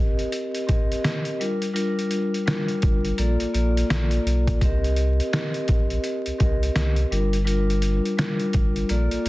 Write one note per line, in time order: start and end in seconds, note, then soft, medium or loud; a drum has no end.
0.00 0.62 C4 loud
0.00 0.62 G4 medium
0.00 0.62 A#4 medium
0.00 0.63 D#5 loud
0.19 closed hi-hat medium
0.32 closed hi-hat loud
0.54 closed hi-hat medium
0.67 1.39 C4 medium
0.67 1.39 G4 medium
0.67 1.39 A#4 medium
0.67 1.40 D#5 loud
0.67 kick loud
0.67 closed hi-hat medium
0.92 closed hi-hat medium
1.04 snare loud
1.04 closed hi-hat medium
1.25 closed hi-hat medium
1.40 1.64 G3 loud
1.40 1.64 D4 medium
1.40 1.64 F4 medium
1.40 1.64 A#4 loud
1.40 closed hi-hat medium
1.62 closed hi-hat medium
1.73 2.42 G3 loud
1.73 2.42 D4 loud
1.73 2.42 F4 medium
1.73 2.42 A#4 loud
1.73 closed hi-hat loud
1.99 closed hi-hat medium
2.11 closed hi-hat medium
2.34 closed hi-hat soft
2.46 3.18 G3 loud
2.46 3.18 D4 medium
2.46 3.17 F4 medium
2.46 3.18 A#4 loud
2.46 snare loud
2.46 closed hi-hat medium
2.68 closed hi-hat medium
2.82 3.13 G1 loud
2.82 kick loud
2.82 closed hi-hat medium
3.05 closed hi-hat medium
3.18 3.37 A#1 loud
3.18 3.52 A#3 medium
3.18 3.52 F4 medium
3.18 3.52 A4 loud
3.18 3.52 D5 loud
3.18 closed hi-hat loud
3.40 3.46 A#1 soft
3.40 closed hi-hat medium
3.54 3.84 A#1 medium
3.54 3.87 A#3 loud
3.54 3.88 F4 medium
3.54 3.88 A4 medium
3.54 3.88 D5 loud
3.54 closed hi-hat medium
3.77 closed hi-hat medium
3.90 4.19 A#1 loud
3.90 4.22 F4 medium
3.90 4.22 A4 medium
3.90 4.23 D5 loud
3.90 snare loud
3.90 closed hi-hat medium
4.11 closed hi-hat medium
4.23 4.55 B1 loud
4.23 4.58 A#3 medium
4.23 4.58 F4 medium
4.23 4.58 A4 medium
4.23 4.58 D5 medium
4.23 closed hi-hat medium
4.47 kick loud
4.47 closed hi-hat medium
4.61 5.21 C2 loud
4.61 5.29 C4 loud
4.61 5.29 G4 medium
4.61 5.30 A#4 medium
4.61 5.30 D#5 loud
4.61 kick loud
4.61 closed hi-hat loud
4.84 closed hi-hat medium
4.96 closed hi-hat medium
5.20 closed hi-hat soft
5.33 6.34 C4 loud
5.33 6.34 G4 medium
5.33 6.34 A#4 medium
5.33 6.34 D#5 loud
5.33 snare loud
5.33 closed hi-hat medium
5.54 closed hi-hat medium
5.68 5.98 A#1 medium
5.68 kick loud
5.68 closed hi-hat medium
5.90 closed hi-hat medium
6.04 closed hi-hat loud
6.26 6.32 C2 soft
6.26 closed hi-hat medium
6.38 6.70 C2 loud
6.38 7.11 C4 medium
6.38 7.11 G4 medium
6.38 7.11 A#4 loud
6.38 7.11 D#5 loud
6.38 kick loud
6.38 closed hi-hat medium
6.63 closed hi-hat medium
6.75 7.05 C2 loud
6.75 snare loud
6.75 closed hi-hat loud
6.96 closed hi-hat medium
7.11 8.00 G1 loud
7.11 7.35 G3 loud
7.11 7.35 D4 medium
7.11 7.36 F4 medium
7.11 7.36 A#4 loud
7.11 closed hi-hat medium
7.33 closed hi-hat medium
7.45 8.13 G3 loud
7.45 8.13 D4 medium
7.45 8.13 F4 medium
7.45 8.13 A#4 loud
7.45 closed hi-hat loud
7.70 closed hi-hat soft
7.82 closed hi-hat medium
8.05 closed hi-hat soft
8.17 8.89 G3 loud
8.17 8.89 D4 medium
8.17 8.88 F4 medium
8.17 8.90 A#4 loud
8.17 snare loud
8.17 closed hi-hat medium
8.40 closed hi-hat soft
8.53 8.84 G1 loud
8.53 kick loud
8.53 closed hi-hat medium
8.76 closed hi-hat medium
8.89 9.08 A#1 loud
8.89 9.23 A#3 loud
8.89 9.23 F4 medium
8.89 9.23 A4 medium
8.89 9.24 D5 loud
8.89 closed hi-hat loud
9.11 9.18 A#1 soft
9.11 closed hi-hat medium
9.25 9.29 A#1 medium
9.25 9.29 A#3 loud
9.25 9.29 F4 medium
9.25 9.29 A4 medium
9.25 9.29 D5 loud
9.25 closed hi-hat medium